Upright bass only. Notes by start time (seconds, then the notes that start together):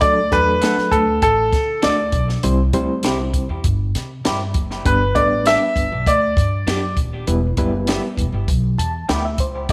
0.01 D2
0.32 E2
0.77 muted upright bass stroke
0.92 D2
1.22 A1
1.53 D3
1.84 D2
2.12 B1
2.44 C2
2.74 D2
3.03 C2
3.49 E2
3.64 G1
3.95 C3
4.26 G2
4.55 F#1
4.86 G1
5.16 A1
5.76 G1
5.92 B1
6.07 D2
6.37 G2
6.67 F#2
6.97 D#1
7.28 E1
7.57 F#1
8.17 E1
8.32 G1
8.48 B1
8.78 E2
9.09 D2
9.38 C#2
9.69 D2